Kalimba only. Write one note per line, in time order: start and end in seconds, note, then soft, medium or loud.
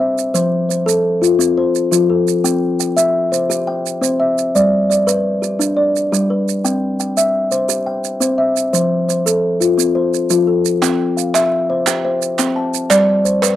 0.00 0.16 C4 medium
0.00 0.33 C5 medium
0.00 0.52 E5 medium
0.34 0.69 F3 medium
0.34 0.68 C5 medium
0.69 1.22 C5 medium
0.86 1.22 A4 medium
1.22 1.74 F4 medium
1.39 1.74 C4 medium
1.57 2.10 C5 medium
1.91 2.27 F3 medium
1.91 2.44 F4 medium
2.10 2.62 A4 medium
2.44 2.80 C4 medium
2.44 2.79 G5 medium
2.80 3.32 G5 medium
2.97 3.32 E5 medium
3.32 3.85 C5 medium
3.50 3.85 G4 medium
3.67 4.20 G5 medium
4.01 4.37 C4 medium
4.01 4.55 C5 medium
4.20 4.72 E5 medium
4.55 4.90 G3 medium
4.55 4.88 D5 medium
4.90 5.42 D5 medium
5.07 5.42 B4 medium
5.42 5.95 G4 medium
5.59 5.94 D4 medium
5.77 6.29 D5 medium
6.12 6.47 G3 medium
6.12 6.64 G4 medium
6.30 6.82 B4 medium
6.65 6.99 C4 medium
6.65 6.99 G5 medium
7.00 7.52 G5 medium
7.17 7.52 E5 medium
7.52 8.04 C5 medium
7.69 8.04 G4 medium
7.86 8.39 G5 medium
8.20 8.56 C4 medium
8.20 8.72 C5 medium
8.38 8.91 E5 medium
8.73 9.08 F3 medium
8.73 9.07 C5 medium
9.09 9.61 C5 medium
9.26 9.61 A4 medium
9.60 10.13 F4 medium
9.78 10.12 C4 medium
9.95 10.47 C5 medium
10.30 10.65 F3 medium
10.30 10.82 F4 medium
10.47 10.99 A4 medium
10.82 11.17 C4 medium
10.82 11.34 G5 medium
11.17 11.69 F5 medium
11.34 11.69 E5 medium
11.70 12.03 C5 medium
11.87 12.21 G4 medium
11.87 12.38 G5 medium
12.05 12.56 C5 medium
12.39 12.73 C4 medium
12.39 12.90 G5 medium
12.56 13.08 A5 medium
12.90 13.25 G3 medium
12.90 13.42 D5 medium
13.25 13.56 C5 medium
13.42 13.56 B4 medium